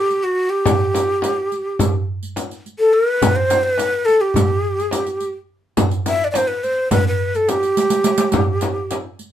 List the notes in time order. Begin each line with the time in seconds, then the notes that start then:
Already playing: G4
0.10 riq
0.24 F#4
0.50 G4
0.66 riq, frame drum, darbuka dum
0.94 riq, darbuka tek, frame drum
1.22 riq, darbuka tek, frame drum
1.52 riq
1.79 riq, frame drum, darbuka dum
2.23 riq
2.36 riq, darbuka tek, frame drum
2.50 riq, darbuka ka
2.66 riq
2.79 A4
2.93 A#4
3.08 B4
3.22 riq, darbuka dum, frame drum
3.36 C5
3.50 riq, darbuka tek, frame drum
3.64 C5
3.76 B4, riq, darbuka tek, frame drum
4.05 A4, riq
4.21 G4
4.34 riq, darbuka dum, frame drum
4.80 riq
4.91 riq, darbuka tek, frame drum
5.06 riq, darbuka ka
5.20 riq
5.77 riq, frame drum, darbuka dum
5.91 riq, darbuka ka
6.06 E5, riq, frame drum
6.24 D5
6.31 D5, riq, darbuka tek
6.36 C5, frame drum
6.48 B4
6.63 C5, riq, darbuka ka
6.91 B4, riq, darbuka dum, frame drum
7.08 B4
7.34 A4, riq, darbuka ka
7.48 G4, riq, darbuka tek, frame drum
7.63 riq, darbuka ka
7.77 riq, darbuka tek
7.90 riq, darbuka ka
8.04 riq, darbuka tek
8.18 riq, darbuka ka
8.32 riq, frame drum, darbuka dum
8.61 riq, darbuka tek, frame drum
8.91 riq, darbuka tek, frame drum
9.19 riq